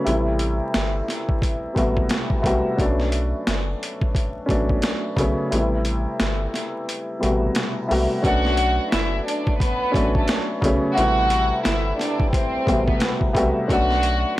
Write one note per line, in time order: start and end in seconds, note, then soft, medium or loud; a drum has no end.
0.04 0.61 A1 loud
0.04 1.34 C3 medium
0.04 1.34 G3 medium
0.04 1.35 A3 medium
0.04 1.35 B3 medium
0.04 closed hi-hat medium
0.09 1.36 E4 medium
0.39 closed hi-hat medium
0.74 1.02 G1 loud
0.74 snare loud
0.74 closed hi-hat medium
1.08 snare soft
1.08 closed hi-hat medium
1.29 kick loud
1.42 kick loud
1.42 closed hi-hat medium
1.74 2.04 A1 medium
1.74 1.83 B2 medium
1.74 2.40 G3 medium
1.74 2.40 A3 medium
1.74 2.41 B3 medium
1.74 kick medium
1.74 closed hi-hat medium
1.78 2.41 C3 medium
1.78 2.41 F#4 medium
1.97 kick medium
2.09 snare loud
2.09 closed hi-hat medium
2.30 kick medium
2.42 2.61 B1 medium
2.42 2.75 C3 medium
2.42 2.76 G3 medium
2.42 2.76 A3 medium
2.42 2.77 B3 medium
2.42 kick medium
2.42 closed hi-hat medium
2.47 2.78 F#4 loud
2.77 3.33 B1 loud
2.77 4.07 F#3 medium
2.77 4.07 A3 medium
2.77 4.08 B3 medium
2.77 4.06 C#4 medium
2.77 kick loud
2.77 closed hi-hat medium
2.81 4.08 D4 medium
3.00 snare soft
3.12 closed hi-hat medium
3.47 3.74 F#1 medium
3.47 snare loud
3.47 closed hi-hat loud
3.83 closed hi-hat medium
4.01 kick loud
4.15 kick loud
4.15 closed hi-hat medium
4.46 4.76 A1 medium
4.46 5.12 F#3 medium
4.46 5.13 A3 medium
4.46 5.13 B3 medium
4.46 5.12 C#4 medium
4.46 kick medium
4.50 5.14 D4 medium
4.50 closed hi-hat medium
4.69 kick medium
4.82 snare loud
4.82 closed hi-hat medium
5.16 5.34 B1 loud
5.16 5.49 C#3 medium
5.16 5.49 F#3 medium
5.16 5.50 A3 medium
5.16 5.50 B3 medium
5.16 kick medium
5.16 closed hi-hat medium
5.21 5.51 C#4 medium
5.50 6.06 A1 loud
5.50 6.79 C3 medium
5.50 6.80 G3 medium
5.50 6.80 A3 medium
5.50 6.81 B3 medium
5.50 closed hi-hat medium
5.55 6.81 E4 medium
5.85 closed hi-hat medium
6.20 6.47 G1 medium
6.20 snare loud
6.20 closed hi-hat medium
6.54 snare soft
6.54 closed hi-hat medium
6.89 closed hi-hat medium
7.19 7.50 A1 medium
7.19 7.28 B2 medium
7.19 7.85 G3 medium
7.19 7.86 A3 medium
7.19 7.86 B3 medium
7.19 closed hi-hat medium
7.24 7.86 C3 medium
7.24 7.87 F#4 medium
7.55 snare loud
7.55 closed hi-hat medium
7.88 8.07 B1 loud
7.88 8.21 C3 medium
7.88 8.21 G3 medium
7.88 8.22 A3 medium
7.88 8.23 B3 medium
7.88 open hi-hat medium
7.92 8.23 F#4 loud
8.22 8.79 B1 loud
8.22 9.52 F#3 medium
8.22 9.53 A3 medium
8.22 9.53 B3 medium
8.22 9.52 C#4 medium
8.22 8.88 F#4 loud
8.22 8.88 F#5 medium
8.22 kick loud
8.22 closed hi-hat medium
8.27 9.54 D4 medium
8.45 snare soft
8.57 closed hi-hat medium
8.92 9.20 F#1 loud
8.92 9.23 E4 medium
8.92 9.23 E5 medium
8.92 snare loud
8.92 closed hi-hat medium
9.27 9.57 D4 medium
9.27 9.58 D5 medium
9.27 closed hi-hat medium
9.47 kick loud
9.60 10.12 B3 medium
9.60 10.12 B4 medium
9.60 kick loud
9.60 closed hi-hat medium
9.92 10.22 A1 loud
9.92 10.58 F#3 medium
9.92 10.58 A3 medium
9.92 10.59 B3 medium
9.92 10.57 C#4 medium
9.92 kick medium
9.92 closed hi-hat medium
9.96 10.60 D4 medium
10.15 10.28 A3 medium
10.15 10.28 A4 medium
10.15 kick medium
10.28 snare loud
10.28 closed hi-hat medium
10.61 10.79 B1 loud
10.61 10.94 C#3 medium
10.61 10.95 F#3 medium
10.61 10.95 A3 medium
10.61 10.96 B3 medium
10.61 kick medium
10.61 closed hi-hat medium
10.66 10.96 C#4 medium
10.95 11.52 A1 loud
10.95 12.25 C3 medium
10.95 12.25 G3 medium
10.95 12.26 A3 medium
10.95 12.26 B3 medium
10.95 11.60 F#4 loud
10.95 11.61 F#5 medium
10.95 closed hi-hat medium
11.00 12.27 E4 medium
11.30 closed hi-hat medium
11.65 11.93 G1 loud
11.65 11.96 E4 medium
11.65 11.96 E5 medium
11.65 snare loud
11.65 closed hi-hat loud
11.99 12.30 D4 medium
11.99 12.30 D5 medium
11.99 snare soft
11.99 closed hi-hat medium
12.20 kick loud
12.33 12.84 C4 medium
12.33 12.85 C5 medium
12.33 kick loud
12.33 closed hi-hat medium
12.65 12.95 A1 medium
12.65 12.74 B2 medium
12.65 13.31 G3 medium
12.65 13.31 A3 medium
12.65 13.32 B3 medium
12.65 kick medium
12.65 closed hi-hat medium
12.69 13.32 C3 medium
12.69 13.32 F#4 medium
12.88 13.00 B3 medium
12.88 13.00 B4 medium
12.88 kick medium
13.00 snare loud
13.00 closed hi-hat medium
13.21 kick loud
13.33 13.52 B1 medium
13.33 13.66 C3 medium
13.33 13.67 G3 medium
13.33 13.67 A3 medium
13.33 13.68 B3 medium
13.33 kick medium
13.33 closed hi-hat medium
13.38 13.69 F#4 loud
13.68 14.24 B1 loud
13.68 14.40 F#3 medium
13.68 14.40 A3 medium
13.68 14.40 B3 medium
13.68 14.40 C#4 medium
13.68 14.34 F#4 loud
13.68 14.34 F#5 medium
13.68 kick loud
13.68 closed hi-hat medium
13.72 14.40 D4 medium
13.91 snare soft
14.03 closed hi-hat medium